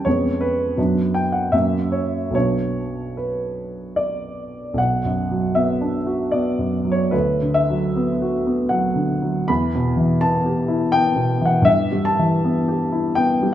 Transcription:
0.05 F2 G#3 B3 C#4 C#5
0.41 B4
0.77 F#2 F#3 B3 D4
1.14 G5
1.32 F#5
1.52 F#2 F#3 A#3 C#4 E5
1.92 C#5
2.30 B1 F#3 B3
2.35 D4 C#5
3.17 B4
3.96 D5
4.74 B1
4.78 F#5
5.05 F#2
5.31 F#3
5.55 B3 E5
5.81 D4
6.07 F#4
6.31 B3 D5
6.58 F#2
6.85 F#3
6.92 C#5
7.11 D2 B4
7.42 D3
7.54 E5
7.70 F#3
7.96 B3
8.22 F#4
8.47 B3
8.69 F#3 F#5
8.95 D3
9.22 F#3
9.48 E2 B5
9.75 B2
9.97 E3
10.21 B3 A5
10.46 G4
10.68 E4
10.92 B3 G5
11.15 B2
11.41 E3
11.45 F#5
11.62 G2 E5
11.92 G3
12.05 A5
12.19 E3
12.45 B3
12.68 G4
12.92 E4
13.15 B3 G5
13.42 G3

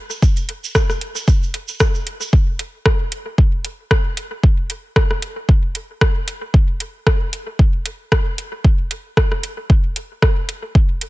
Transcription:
0.10 shaker
0.22 kick, shaker
0.37 closed hi-hat, shaker
0.49 closed hi-hat
0.64 shaker
0.75 kick, cross-stick, shaker
0.90 cross-stick, shaker
1.01 closed hi-hat
1.16 shaker
1.28 kick, shaker
1.43 shaker
1.54 closed hi-hat
1.68 shaker
1.80 kick, cross-stick, shaker
1.95 shaker
2.07 closed hi-hat
2.21 shaker
2.33 kick
2.59 closed hi-hat
2.86 kick, cross-stick
3.12 closed hi-hat
3.38 kick
3.65 closed hi-hat
3.91 kick, cross-stick
4.17 closed hi-hat
4.43 kick
4.70 closed hi-hat
4.96 kick, cross-stick
5.11 cross-stick
5.22 closed hi-hat
5.49 kick
5.75 closed hi-hat
6.01 kick, cross-stick
6.28 closed hi-hat
6.54 kick
6.80 closed hi-hat
7.07 kick, cross-stick
7.33 closed hi-hat
7.59 kick
7.86 closed hi-hat
8.12 kick, cross-stick
8.38 closed hi-hat
8.64 kick
8.91 closed hi-hat
9.17 kick, cross-stick
9.32 cross-stick
9.43 closed hi-hat
9.70 kick
9.96 closed hi-hat
10.22 kick, cross-stick
10.49 closed hi-hat
10.75 kick
11.01 closed hi-hat

